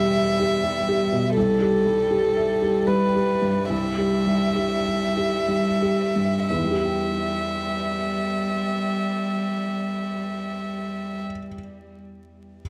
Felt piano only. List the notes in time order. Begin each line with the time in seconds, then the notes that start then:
Already playing: E2 G3 G4
0.16 E5
0.40 G4
0.64 G3
0.89 G4
1.12 B2
1.37 C2
1.61 G4
1.86 G3
2.11 G4
2.37 E5
2.62 G4
2.88 G3
3.16 G4
3.42 G2
3.70 C2
3.98 G4
4.27 G3
4.55 G4
4.86 E5
5.17 G4
5.48 G3
5.82 G4
6.16 G2
6.50 E2
6.57 E3
6.64 G3
6.71 G4
6.78 E5
6.85 G5